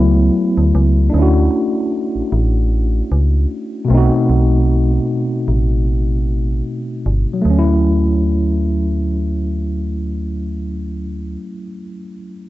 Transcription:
0.00 0.30 C#2 medium
0.00 1.08 F#3 medium
0.00 1.10 A3 medium
0.00 1.13 B3 medium
0.00 1.15 E4 medium
0.58 0.73 D2 medium
0.75 1.10 C#2 loud
1.10 3.86 A3 medium
1.10 3.84 D4 medium
1.14 1.49 D2 medium
1.14 3.87 C#4 medium
1.19 3.89 E4 medium
1.19 3.90 F#4 medium
2.16 2.22 A1 soft
2.32 3.02 A1 medium
3.12 3.46 C#2 medium
3.85 6.99 B2 medium
3.85 7.01 A3 medium
3.90 4.10 B1 medium
3.90 7.02 C4 medium
3.90 7.04 D#4 medium
3.97 7.06 F#4 medium
4.29 4.99 B1 medium
5.48 6.62 A1 medium
7.06 7.26 G1 medium
7.33 11.35 F#3 medium
7.42 11.37 D2 medium
7.42 11.43 A3 medium
7.50 11.52 C#4 medium
7.59 11.60 E4 medium

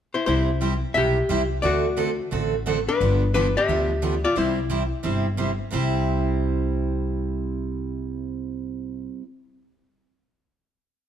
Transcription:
0.14 0.26 E4 medium
0.14 0.25 C5 medium
0.26 0.82 C2 medium
0.26 0.49 C3 medium
0.26 0.49 G3 medium
0.26 0.49 C4 medium
0.26 0.49 E4 medium
0.26 0.80 E4 medium
0.26 0.49 G4 medium
0.26 0.79 C5 medium
0.61 0.72 C3 medium
0.61 0.72 G3 medium
0.61 0.73 C4 medium
0.61 0.73 E4 medium
0.61 0.73 G4 medium
0.94 1.24 B1 medium
0.94 1.16 C3 medium
0.94 1.17 G3 medium
0.94 1.17 C4 medium
0.94 1.17 E4 medium
0.94 1.17 G4 medium
0.94 1.48 G4 medium
0.94 1.47 E5 loud
1.29 1.58 C2 medium
1.29 1.41 C3 medium
1.29 1.41 G3 medium
1.29 1.41 C4 medium
1.29 1.41 E4 medium
1.29 1.41 G4 medium
1.62 2.18 D2 medium
1.62 1.85 D3 medium
1.62 1.85 A3 medium
1.62 1.85 C4 medium
1.62 1.85 F#4 medium
1.62 2.29 F#4 medium
1.62 1.85 A4 medium
1.62 2.27 D5 medium
1.97 2.09 D3 medium
1.97 2.09 A3 medium
1.97 2.09 C4 medium
1.97 2.09 F#4 medium
1.97 2.09 A4 medium
2.31 2.87 A1 medium
2.31 2.53 D3 medium
2.31 2.53 A3 medium
2.31 2.54 C4 medium
2.31 2.54 F#4 medium
2.31 2.54 A4 medium
2.66 2.77 D3 medium
2.66 2.78 A3 medium
2.66 2.78 C4 medium
2.66 2.78 F#4 medium
2.66 2.78 A4 medium
2.89 3.31 D4 medium
2.89 3.31 B4 loud
3.00 3.55 G1 medium
3.00 3.22 D3 medium
3.00 3.22 F3 medium
3.00 3.22 B3 medium
3.00 3.22 D4 medium
3.00 3.22 G4 medium
3.34 3.45 D3 medium
3.34 3.46 F3 medium
3.34 3.46 B3 medium
3.34 3.55 D4 medium
3.34 3.46 D4 medium
3.34 3.46 G4 medium
3.34 3.57 B4 medium
3.57 4.21 G4 medium
3.57 4.10 E5 loud
3.68 4.23 D2 medium
3.68 3.90 D3 medium
3.68 3.90 F3 medium
3.68 3.90 B3 medium
3.68 3.90 D4 medium
3.68 3.90 G4 medium
4.02 4.13 D3 medium
4.02 4.14 F3 medium
4.02 4.14 B3 medium
4.02 4.14 D4 medium
4.02 4.14 G4 medium
4.10 4.24 D5 loud
4.25 4.36 F4 medium
4.25 4.38 D5 medium
4.36 4.91 C2 medium
4.36 4.58 C3 medium
4.36 4.58 G3 medium
4.36 4.58 C4 medium
4.36 4.58 E4 medium
4.36 5.35 E4 medium
4.36 4.58 G4 medium
4.36 5.39 C5 medium
4.70 4.81 C3 medium
4.70 4.81 G3 medium
4.70 4.82 C4 medium
4.70 4.82 E4 medium
4.70 4.82 G4 medium
5.03 5.59 G1 medium
5.03 5.25 C3 medium
5.03 5.26 G3 medium
5.03 5.26 C4 medium
5.03 5.26 E4 medium
5.03 5.26 G4 medium
5.37 5.49 C3 medium
5.37 5.50 G3 medium
5.37 5.50 C4 medium
5.37 5.50 E4 medium
5.37 5.50 G4 medium
5.71 9.06 C2 medium
5.71 9.21 C3 medium
5.71 9.21 G3 medium
5.71 9.22 C4 medium
5.71 9.23 E4 medium
5.71 9.24 G4 medium

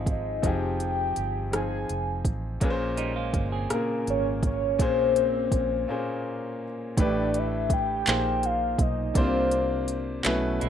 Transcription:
0.00 0.39 G#1 medium
0.00 0.42 F3 medium
0.00 0.58 G#3 medium
0.00 0.43 C4 medium
0.00 0.44 D#4 medium
0.00 0.58 F4 medium
0.00 0.45 G4 medium
0.00 0.46 G#4 medium
0.06 kick medium
0.06 closed hi-hat soft
0.12 0.48 D#5 medium
0.42 1.12 F1 loud
0.42 1.18 F3 medium
0.42 1.18 C4 medium
0.42 1.18 D#4 medium
0.42 1.19 G4 medium
0.42 1.19 G#4 medium
0.42 kick loud
0.42 closed hi-hat medium
0.47 1.54 G5 loud
0.80 closed hi-hat soft
1.16 1.85 G1 medium
1.16 closed hi-hat soft
1.51 2.26 F3 medium
1.51 2.27 C4 medium
1.51 2.27 D#4 medium
1.51 2.28 F4 soft
1.51 2.28 G#4 medium
1.51 cross-stick loud
1.51 closed hi-hat medium
1.56 2.31 G#5 loud
1.89 2.22 F1 medium
1.89 closed hi-hat soft
2.25 2.58 A1 medium
2.25 kick medium
2.25 closed hi-hat soft
2.60 3.30 A#1 loud
2.60 3.36 A#2 medium
2.60 3.36 A#3 medium
2.60 3.37 C#4 medium
2.60 3.37 G#4 medium
2.60 2.69 B4 medium
2.60 kick loud
2.60 closed hi-hat medium
2.70 3.41 C5 loud
2.97 3.15 G3 medium
2.97 3.15 D#4 medium
2.97 closed hi-hat soft
3.16 3.51 G#3 medium
3.16 3.50 F4 medium
3.34 3.67 G1 loud
3.34 kick medium
3.34 closed hi-hat soft
3.52 4.57 C4 medium
3.52 4.57 G#4 medium
3.70 4.45 A#2 medium
3.70 4.46 C#3 medium
3.70 4.45 A#3 medium
3.70 4.46 G#4 medium
3.70 4.47 A#4 medium
3.70 cross-stick loud
3.70 closed hi-hat medium
4.07 4.80 G#1 medium
4.07 4.42 C#5 loud
4.07 closed hi-hat soft
4.43 4.84 C#5 loud
4.43 kick loud
4.43 closed hi-hat soft
4.79 5.48 A#1 loud
4.79 5.54 A#2 medium
4.79 5.54 A#3 medium
4.79 5.55 C#4 medium
4.79 5.55 G#4 medium
4.79 5.55 C5 medium
4.79 6.26 C5 loud
4.79 kick loud
4.79 closed hi-hat medium
5.16 closed hi-hat medium
5.52 5.85 A#1 medium
5.52 kick medium
5.52 closed hi-hat soft
5.88 6.63 A#2 medium
5.88 6.64 A#3 medium
5.88 6.64 C#4 medium
5.88 6.64 G#4 medium
5.88 6.65 C5 medium
6.97 8.03 A1 loud
6.97 7.72 A2 medium
6.97 7.73 A3 medium
6.97 7.73 D4 medium
6.97 7.74 G4 medium
6.97 7.74 B4 loud
6.97 kick loud
6.97 closed hi-hat medium
7.01 7.40 D5 loud
7.34 closed hi-hat medium
7.39 7.73 E5 loud
7.70 8.47 G5 loud
7.70 kick loud
7.70 closed hi-hat medium
8.06 8.76 A#1 loud
8.06 8.81 A#2 medium
8.06 8.82 A#3 medium
8.06 8.82 D#4 medium
8.06 8.83 G#4 medium
8.06 8.83 C5 medium
8.06 clap loud
8.06 closed hi-hat medium
8.43 8.83 F5 loud
8.43 closed hi-hat soft
8.79 9.12 B1 loud
8.79 9.19 D#5 medium
8.79 kick loud
8.79 closed hi-hat soft
9.14 10.21 C2 loud
9.14 9.90 C3 medium
9.14 9.90 A#3 medium
9.14 9.91 D4 medium
9.14 9.23 E4 medium
9.14 9.91 C5 loud
9.14 9.98 C5 loud
9.14 kick loud
9.14 closed hi-hat medium
9.23 9.94 F4 medium
9.51 closed hi-hat medium
9.88 closed hi-hat medium
10.23 10.58 B1 loud
10.23 10.69 B2 medium
10.23 10.69 A3 medium
10.23 10.69 C#4 medium
10.23 10.69 E4 medium
10.23 10.69 B4 loud
10.23 clap loud
10.23 closed hi-hat medium
10.61 10.69 B1 medium
10.61 10.69 G#3 medium
10.61 10.69 E4 medium
10.61 closed hi-hat medium

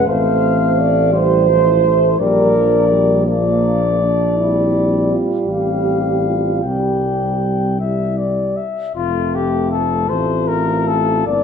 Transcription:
0.06 2.15 A1 medium
0.06 1.14 A3 medium
0.06 1.16 C4 medium
0.06 0.77 C5 medium
0.06 1.11 F5 medium
0.78 1.13 D5 medium
1.12 1.50 G3 medium
1.12 2.21 E4 medium
1.12 2.20 C5 medium
1.49 1.87 F3 soft
1.85 2.19 A3 medium
2.19 5.14 A#1 medium
2.19 2.57 G3 medium
2.19 4.08 D4 medium
2.19 3.24 A#4 medium
2.19 3.25 D5 soft
2.55 2.93 F3 soft
2.91 3.29 G3 soft
3.26 4.09 F3 soft
3.26 3.99 A#3 medium
3.26 5.14 D5 soft
4.00 4.37 D4 medium
4.37 6.60 G3 soft
4.37 5.43 C4 soft
4.37 5.10 E4 medium
5.10 5.47 F4 medium
5.46 6.65 A1 soft
5.46 6.63 C4 soft
5.46 6.25 G4 medium
5.46 6.60 F5 soft
6.24 6.63 F4 soft
6.62 8.61 C2 soft
6.62 7.78 G3 soft
6.62 7.81 C4 soft
6.62 7.80 G4 medium
6.62 7.77 G5 soft
7.80 8.60 G3 soft
7.80 8.62 E4 soft
7.80 8.19 E5 soft
8.17 8.58 D5 soft
8.56 8.94 E5 soft
8.95 10.10 F1 soft
8.95 10.05 A3 soft
8.95 10.05 C4 soft
8.95 9.36 F4 medium
8.95 10.06 F4 soft
9.35 9.70 G4 soft
9.71 10.10 A4 medium
10.08 11.26 A1 soft
10.08 11.29 A3 soft
10.08 11.25 C4 soft
10.08 11.24 F4 soft
10.08 10.49 C5 medium
10.48 10.89 A#4 medium
10.87 11.26 A4 medium
11.26 11.44 G1 soft
11.26 11.44 A#3 soft
11.26 11.44 C4 soft
11.26 11.44 E4 soft
11.26 11.44 D5 medium

